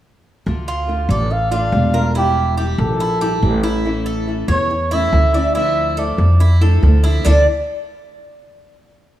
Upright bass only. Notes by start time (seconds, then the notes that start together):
0.47 D2
1.09 A1
1.72 E1
2.78 A#1
3.43 A1
4.48 E2
5.13 D2
6.18 F2
6.83 D2
7.25 D2